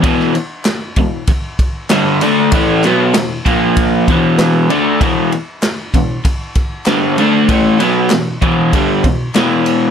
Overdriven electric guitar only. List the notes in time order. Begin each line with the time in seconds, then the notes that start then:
0.02 E2 B2 E3
0.35 muted overdriven electric guitar stroke
0.97 E2 B2
1.29 muted overdriven electric guitar stroke
1.91 G2 D3 G3
2.22 D3 A3 D4
2.53 A2 E3 A3
2.85 B2 F#3 B3
3.15 E2 B2
3.46 A#2 F3 A#3
4.08 E2 B2 E3
4.70 D3 A3 D4
5.01 E2 B2 E3
5.33 muted overdriven electric guitar stroke
5.94 E2 B2
6.25 muted overdriven electric guitar stroke
6.87 G2 D3 G3
7.19 D3 A3 D4
7.49 A2 E3 A3
7.79 B2 F#3 B3
8.12 E2 B2
8.42 E2 B2 E3
8.73 G2 D3 G3
9.04 E2 B2
9.35 E2 B2 E3